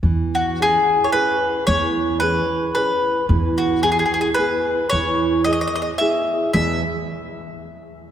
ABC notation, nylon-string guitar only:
X:1
M:3/4
L:1/8
Q:"Swing" 1/4=111
K:E
V:1 name="Nylon-string guitar"
E,2 [CEG]2 [CEG]2 | E,2 [CEG]2 [CEG]2 | E,2 [B,EG]2 [B,EG]2 | E,2 [B,EG]2 [B,EG]2 |
[E,,B,,E,B,GB] z4 z |]